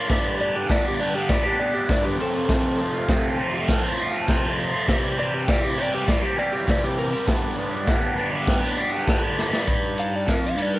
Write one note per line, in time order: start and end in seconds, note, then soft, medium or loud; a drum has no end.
0.07 0.65 G2 loud
0.07 0.67 D3 medium
0.07 0.35 G3 loud
0.07 0.37 B3 loud
0.07 0.39 D4 loud
0.07 kick loud
0.07 snare loud
0.07 crash medium
0.07 shaker medium
0.12 0.40 G4 loud
0.24 shaker soft
0.37 0.55 G3 medium
0.37 0.53 B3 medium
0.37 0.52 D4 medium
0.37 shaker medium
0.41 0.50 G4 medium
0.41 0.54 D5 medium
0.51 0.68 B3 medium
0.51 0.69 D4 medium
0.51 0.69 G4 medium
0.56 0.67 G3 medium
0.56 0.69 G4 medium
0.66 1.27 G2 loud
0.66 1.28 D3 loud
0.66 0.97 G3 loud
0.66 0.98 B3 medium
0.66 1.00 D4 loud
0.66 kick loud
0.66 crash medium
0.66 shaker loud
0.71 1.02 G4 loud
0.71 0.85 D5 loud
0.71 snare loud
0.84 shaker soft
0.88 1.01 G4 medium
0.99 1.16 G3 medium
0.99 1.15 B3 medium
0.99 1.13 D4 medium
0.99 1.14 D5 loud
0.99 shaker medium
1.03 1.12 G4 medium
1.13 1.46 G3 medium
1.13 1.45 B3 medium
1.13 1.43 D4 medium
1.13 1.42 G4 medium
1.13 1.29 G4 medium
1.13 shaker soft
1.29 1.43 D5 medium
1.29 kick loud
1.29 snare loud
1.29 crash medium
1.29 shaker medium
1.43 1.59 B3 medium
1.43 1.60 D4 medium
1.43 1.62 G4 medium
1.43 1.59 G4 medium
1.43 shaker soft
1.47 1.57 G3 medium
1.58 1.76 G3 medium
1.58 1.75 B3 medium
1.58 1.73 D4 medium
1.58 1.74 D5 medium
1.58 shaker medium
1.63 1.71 G4 loud
1.72 1.90 D4 medium
1.72 1.91 G4 medium
1.72 1.88 G4 medium
1.72 shaker soft
1.76 1.89 G3 medium
1.76 1.90 B3 medium
1.88 2.16 G2 loud
1.88 2.17 D3 medium
1.88 2.07 G3 loud
1.88 2.05 B3 loud
1.88 2.04 D4 loud
1.88 2.04 D5 medium
1.88 kick loud
1.88 snare loud
1.88 crash medium
1.88 shaker loud
1.92 2.02 G4 loud
2.04 2.18 B3 medium
2.04 2.18 D4 medium
2.04 2.17 G4 medium
2.04 2.19 G4 medium
2.04 shaker soft
2.08 2.19 G3 medium
2.18 2.46 F2 medium
2.18 2.48 C3 loud
2.18 2.36 F3 loud
2.18 2.35 A3 loud
2.18 3.36 A4 medium
2.18 shaker medium
2.22 2.34 C4 loud
2.22 2.32 F4 loud
2.33 2.50 A3 medium
2.33 2.51 C4 medium
2.33 2.52 F4 medium
2.33 shaker soft
2.37 2.49 F3 medium
2.48 3.07 F2 loud
2.48 3.08 C3 loud
2.48 2.77 F3 medium
2.48 2.79 A3 loud
2.48 kick loud
2.48 snare loud
2.48 crash medium
2.48 shaker medium
2.52 2.82 C4 loud
2.52 2.82 F4 loud
2.63 shaker soft
2.78 2.97 F3 medium
2.78 2.95 A3 medium
2.78 2.94 C4 medium
2.78 shaker medium
2.83 2.92 F4 medium
2.93 3.10 A3 medium
2.93 3.11 C4 medium
2.93 3.12 F4 medium
2.98 3.09 F3 medium
3.08 3.68 F2 medium
3.08 3.69 C3 loud
3.08 3.37 F3 loud
3.08 3.39 A3 loud
3.08 3.41 C4 loud
3.08 kick loud
3.08 snare loud
3.08 crash medium
3.08 shaker loud
3.13 3.42 F4 loud
3.24 shaker soft
3.38 3.57 F3 medium
3.38 3.56 A3 medium
3.38 3.54 C4 medium
3.38 shaker medium
3.43 3.53 F4 medium
3.54 3.84 A3 medium
3.54 3.83 C4 medium
3.54 3.82 F4 medium
3.54 shaker soft
3.59 3.86 F3 medium
3.68 kick loud
3.68 snare loud
3.68 crash medium
3.68 shaker loud
3.83 3.98 A3 medium
3.83 3.99 C4 medium
3.83 4.01 F4 medium
3.83 shaker soft
3.87 3.96 F3 medium
3.97 4.16 F3 medium
3.97 4.14 A3 medium
3.97 4.13 C4 medium
3.97 shaker medium
4.02 4.12 F4 medium
4.13 4.29 A3 medium
4.13 4.29 C4 medium
4.13 4.31 F4 medium
4.13 shaker soft
4.17 4.28 F3 medium
4.27 4.72 F2 loud
4.27 4.73 C3 medium
4.27 4.45 F3 loud
4.27 4.44 A3 loud
4.27 4.43 C4 loud
4.27 kick loud
4.27 snare loud
4.27 crash medium
4.27 shaker loud
4.32 4.41 F4 loud
4.42 4.74 A3 medium
4.42 4.72 C4 medium
4.42 4.71 F4 medium
4.42 shaker soft
4.46 4.75 F3 medium
4.59 shaker medium
4.72 4.87 A3 medium
4.72 4.86 C4 medium
4.72 4.85 F4 medium
4.72 shaker soft
4.76 4.88 F3 medium
4.87 5.45 C3 loud
4.87 5.15 E3 loud
4.87 5.18 G3 loud
4.87 5.19 C4 loud
4.87 kick loud
4.87 snare loud
4.87 crash medium
4.87 shaker medium
4.91 5.21 G4 loud
5.04 shaker soft
5.17 5.47 E3 medium
5.17 5.35 G3 medium
5.17 5.33 C4 medium
5.17 5.33 D5 medium
5.17 shaker medium
5.21 5.32 G4 medium
5.32 5.49 G3 medium
5.32 5.49 C4 medium
5.32 5.50 G4 medium
5.32 5.48 G4 medium
5.47 6.07 C3 medium
5.47 5.75 E3 loud
5.47 5.77 G3 loud
5.47 5.78 C4 loud
5.47 5.63 D5 medium
5.47 kick loud
5.47 snare loud
5.47 crash medium
5.47 shaker loud
5.51 5.80 G4 loud
5.64 5.78 G4 medium
5.64 shaker soft
5.76 6.22 E3 medium
5.76 5.95 G3 medium
5.76 5.92 C4 medium
5.76 5.92 D5 medium
5.76 shaker medium
5.80 5.90 G4 loud
5.91 6.23 C4 medium
5.91 6.21 G4 medium
5.91 6.08 G4 medium
5.91 shaker soft
5.95 6.25 G3 medium
6.07 6.22 D5 medium
6.07 kick loud
6.07 snare loud
6.07 crash medium
6.07 shaker loud
6.21 6.38 C4 medium
6.21 6.40 G4 medium
6.21 6.37 G4 loud
6.21 shaker soft
6.26 6.38 G3 medium
6.37 6.67 E3 medium
6.37 6.55 G3 medium
6.37 6.52 C4 loud
6.37 6.53 D5 loud
6.37 shaker medium
6.41 6.51 G4 medium
6.51 6.69 C4 medium
6.51 6.70 G4 medium
6.51 6.67 G4 loud
6.51 shaker soft
6.56 6.69 G3 medium
6.67 7.12 C3 loud
6.67 7.13 E3 loud
6.67 6.85 G3 loud
6.67 6.82 C4 loud
6.67 6.83 D5 medium
6.67 kick loud
6.67 snare loud
6.67 crash medium
6.67 shaker loud
6.71 6.81 G4 loud
6.81 7.12 C4 medium
6.81 7.10 G4 medium
6.81 6.98 G4 medium
6.81 shaker soft
6.85 7.15 G3 medium
6.97 7.27 A#4 loud
6.97 shaker medium
7.11 7.26 C4 medium
7.11 7.30 G4 medium
7.11 shaker soft
7.15 7.28 G3 medium
7.26 7.84 G2 medium
7.26 7.85 D3 medium
7.26 7.55 G3 loud
7.26 7.57 B3 medium
7.26 7.58 D4 loud
7.26 kick loud
7.26 snare loud
7.26 crash medium
7.26 shaker loud
7.31 7.59 G4 loud
7.42 shaker soft
7.56 7.74 G3 medium
7.56 7.73 B3 medium
7.56 7.72 D4 medium
7.56 7.69 G4 medium
7.56 shaker medium
7.71 7.88 B3 medium
7.71 7.88 D4 medium
7.71 7.89 G4 medium
7.71 shaker soft
7.75 7.86 G3 medium
7.85 8.46 G2 loud
7.85 8.47 D3 medium
7.85 8.14 G3 medium
7.85 8.17 B3 medium
7.85 8.18 D4 loud
7.85 kick loud
7.85 snare loud
7.85 crash medium
7.85 shaker loud
7.90 8.19 G4 loud
8.02 shaker soft
8.16 8.34 G3 medium
8.16 8.33 B3 medium
8.16 8.31 D4 medium
8.16 shaker medium
8.20 8.29 G4 loud
8.31 8.64 B3 medium
8.31 8.62 D4 medium
8.31 8.60 G4 medium
8.31 shaker soft
8.35 8.65 G3 medium
8.46 kick loud
8.46 snare loud
8.46 crash medium
8.46 shaker loud
8.61 8.77 B3 medium
8.61 8.78 D4 medium
8.61 8.79 G4 medium
8.61 shaker soft
8.66 8.75 G3 medium
8.76 8.94 G3 medium
8.76 8.93 B3 medium
8.76 8.92 D4 medium
8.76 8.90 G4 medium
8.76 shaker medium
8.91 9.07 B3 medium
8.91 9.08 D4 medium
8.91 9.09 G4 medium
8.91 shaker soft
8.96 9.06 G3 medium
9.05 9.52 G2 medium
9.05 9.52 D3 loud
9.05 9.24 G3 loud
9.05 9.23 B3 loud
9.05 9.22 D4 loud
9.05 kick loud
9.05 snare loud
9.05 crash medium
9.05 shaker medium
9.10 9.20 G4 loud
9.21 9.53 B3 medium
9.21 9.51 D4 medium
9.21 9.49 G4 medium
9.21 shaker soft
9.25 9.54 G3 medium
9.38 snare medium
9.38 shaker medium
9.50 9.67 B3 medium
9.50 9.66 D4 medium
9.50 9.65 G4 medium
9.50 snare medium
9.50 shaker soft
9.55 9.66 G3 medium
9.66 10.26 G2 medium
9.66 10.27 G3 loud
9.66 kick loud
9.66 ride loud
9.66 shaker medium
9.97 10.13 F5 loud
9.97 ride medium
9.97 shaker loud
10.13 10.29 D5 medium
10.13 shaker soft
10.26 10.56 F2 medium
10.26 10.57 F3 medium
10.26 kick loud
10.26 snare loud
10.26 ride loud
10.26 shaker medium
10.30 10.44 A#4 medium
10.46 10.59 F5 medium
10.56 10.79 G2 loud
10.56 10.79 G3 loud
10.56 ride medium
10.56 shaker medium
10.62 10.75 D5 medium
10.74 10.79 A#4 medium